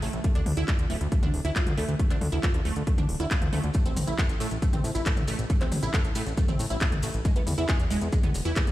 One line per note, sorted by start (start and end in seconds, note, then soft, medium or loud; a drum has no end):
0.02 0.09 A1 loud
0.02 0.07 A3 loud
0.02 open hi-hat medium
0.13 0.20 A1 medium
0.13 closed hi-hat medium
0.24 0.27 A3 medium
0.24 kick loud
0.24 closed hi-hat medium
0.35 0.42 D2 medium
0.35 0.40 D4 loud
0.35 closed hi-hat medium
0.46 0.53 D2 loud
0.46 open hi-hat loud
0.46 mid tom medium
0.57 0.64 D2 medium
0.57 0.60 E4 loud
0.57 closed hi-hat medium
0.68 0.73 F4 medium
0.68 kick loud
0.68 clap loud
0.68 closed hi-hat medium
0.79 0.86 D2 medium
0.79 closed hi-hat medium
0.90 0.96 D1 loud
0.90 0.95 A3 loud
0.90 open hi-hat medium
1.01 1.08 D2 medium
1.01 closed hi-hat soft
1.12 1.15 A3 medium
1.12 kick loud
1.12 closed hi-hat medium
1.23 1.29 D2 medium
1.23 1.28 D4 loud
1.23 closed hi-hat medium
1.23 mid tom medium
1.34 1.40 D1 loud
1.34 open hi-hat loud
1.45 1.51 D2 medium
1.45 1.48 E4 loud
1.45 closed hi-hat medium
1.56 1.61 F4 loud
1.56 kick loud
1.56 clap loud
1.56 closed hi-hat medium
1.67 1.73 D2 medium
1.67 closed hi-hat medium
1.67 mid tom medium
1.77 1.84 D2 loud
1.77 1.82 A3 loud
1.77 open hi-hat medium
1.89 1.95 D2 medium
1.89 closed hi-hat medium
1.99 2.02 A3 medium
1.99 kick loud
1.99 closed hi-hat medium
2.10 2.17 D2 medium
2.10 2.15 D4 loud
2.10 clap soft
2.10 closed hi-hat medium
2.21 2.28 D2 loud
2.21 open hi-hat loud
2.21 mid tom medium
2.32 2.39 D2 medium
2.32 2.35 E4 loud
2.32 closed hi-hat medium
2.43 2.48 F4 loud
2.43 kick loud
2.43 clap loud
2.43 closed hi-hat medium
2.54 2.61 D2 medium
2.54 closed hi-hat medium
2.65 2.72 D1 loud
2.65 2.70 A3 loud
2.65 open hi-hat medium
2.76 2.83 D2 medium
2.76 closed hi-hat medium
2.87 2.90 A3 medium
2.87 kick loud
2.87 closed hi-hat medium
2.98 3.05 D2 medium
2.98 3.03 D4 loud
2.98 closed hi-hat medium
2.98 mid tom medium
3.09 3.15 D1 medium
3.09 open hi-hat loud
3.20 3.26 D2 medium
3.20 3.23 E4 loud
3.20 closed hi-hat medium
3.31 3.36 F4 loud
3.31 kick loud
3.31 clap loud
3.31 closed hi-hat medium
3.42 3.48 D2 medium
3.42 closed hi-hat medium
3.42 mid tom medium
3.53 3.59 D2 loud
3.53 3.58 A3 loud
3.53 open hi-hat medium
3.53 mid tom medium
3.64 3.70 D2 medium
3.64 closed hi-hat medium
3.74 3.78 A3 medium
3.74 kick loud
3.74 closed hi-hat medium
3.74 maracas medium
3.85 3.92 A1 medium
3.85 3.91 C4 loud
3.85 closed hi-hat medium
3.85 maracas soft
3.97 4.03 A1 loud
3.97 open hi-hat loud
3.97 mid tom medium
3.97 maracas medium
4.07 4.14 A1 medium
4.07 4.10 E4 loud
4.07 closed hi-hat medium
4.07 maracas soft
4.18 4.23 A4 loud
4.18 kick loud
4.18 clap loud
4.18 closed hi-hat medium
4.18 maracas medium
4.29 4.36 A1 medium
4.29 closed hi-hat medium
4.29 maracas soft
4.40 4.47 A2 loud
4.40 4.45 A3 loud
4.40 open hi-hat medium
4.40 maracas medium
4.51 4.58 A1 medium
4.51 closed hi-hat medium
4.51 maracas soft
4.62 4.65 A3 medium
4.62 kick loud
4.62 closed hi-hat medium
4.62 maracas soft
4.73 4.80 A1 medium
4.73 4.78 C4 loud
4.73 closed hi-hat medium
4.73 mid tom medium
4.73 maracas soft
4.84 4.91 A2 loud
4.84 open hi-hat loud
4.84 maracas medium
4.95 5.02 A1 medium
4.95 4.98 E4 loud
4.95 closed hi-hat medium
4.95 maracas soft
5.06 5.11 A4 loud
5.06 kick loud
5.06 clap loud
5.06 closed hi-hat medium
5.06 maracas medium
5.17 5.23 A1 medium
5.17 closed hi-hat medium
5.17 mid tom medium
5.17 maracas soft
5.28 5.34 A1 loud
5.28 5.33 A3 loud
5.28 open hi-hat medium
5.28 maracas medium
5.39 5.45 A1 medium
5.39 closed hi-hat medium
5.39 maracas soft
5.50 5.53 A3 medium
5.50 kick loud
5.50 closed hi-hat medium
5.50 maracas soft
5.61 5.67 A1 medium
5.61 5.66 C4 loud
5.61 clap soft
5.61 closed hi-hat medium
5.61 maracas soft
5.72 5.78 A1 medium
5.72 open hi-hat loud
5.72 mid tom medium
5.72 maracas medium
5.83 5.89 A1 medium
5.83 5.86 E4 loud
5.83 closed hi-hat medium
5.83 maracas soft
5.94 5.99 A4 loud
5.94 kick loud
5.94 clap loud
5.94 closed hi-hat medium
5.94 maracas medium
6.05 6.11 A1 medium
6.05 closed hi-hat soft
6.05 maracas soft
6.15 6.22 A2 loud
6.15 6.20 A3 loud
6.15 open hi-hat loud
6.15 maracas medium
6.26 6.33 A1 medium
6.26 closed hi-hat soft
6.26 maracas soft
6.37 6.40 A3 medium
6.37 kick loud
6.37 closed hi-hat medium
6.37 maracas medium
6.48 6.55 A1 medium
6.48 6.53 C4 loud
6.48 closed hi-hat medium
6.48 mid tom medium
6.48 maracas soft
6.59 6.66 A2 loud
6.59 open hi-hat loud
6.59 maracas medium
6.70 6.77 A1 medium
6.70 6.73 E4 loud
6.70 closed hi-hat medium
6.70 maracas soft
6.80 6.86 A4 loud
6.80 kick loud
6.80 clap loud
6.80 closed hi-hat medium
6.80 maracas medium
6.92 6.99 A1 medium
6.92 closed hi-hat medium
6.92 mid tom medium
6.92 maracas soft
7.03 7.10 A1 loud
7.03 7.08 A3 loud
7.03 open hi-hat loud
7.03 maracas loud
7.14 7.21 A1 loud
7.14 closed hi-hat medium
7.14 maracas soft
7.25 7.28 G#3 medium
7.25 kick loud
7.25 closed hi-hat medium
7.25 maracas medium
7.36 7.43 E2 medium
7.36 7.41 B3 loud
7.36 closed hi-hat medium
7.36 maracas soft
7.47 7.54 E2 loud
7.47 open hi-hat loud
7.47 mid tom medium
7.47 maracas medium
7.58 7.64 E2 medium
7.58 7.61 E4 loud
7.58 closed hi-hat medium
7.58 maracas soft
7.68 7.74 G#4 loud
7.68 kick loud
7.68 clap loud
7.68 closed hi-hat medium
7.68 maracas medium
7.80 7.86 E2 medium
7.80 closed hi-hat soft
7.80 maracas soft
7.90 7.97 E1 loud
7.90 7.96 G#3 loud
7.90 open hi-hat medium
7.90 maracas medium
8.01 8.08 E2 medium
8.01 closed hi-hat medium
8.01 maracas soft
8.12 8.16 G#3 medium
8.12 kick loud
8.12 closed hi-hat medium
8.12 maracas soft
8.23 8.30 E2 medium
8.23 8.28 B3 loud
8.23 closed hi-hat soft
8.23 mid tom medium
8.23 maracas soft
8.34 8.41 E1 loud
8.34 open hi-hat loud
8.34 maracas loud
8.45 8.52 E2 medium
8.45 8.48 E4 loud
8.45 closed hi-hat soft
8.45 maracas soft
8.56 8.61 G#4 loud
8.56 kick loud
8.56 clap loud
8.56 closed hi-hat medium
8.56 maracas medium
8.67 8.72 E2 medium
8.67 closed hi-hat medium
8.67 mid tom medium
8.67 maracas soft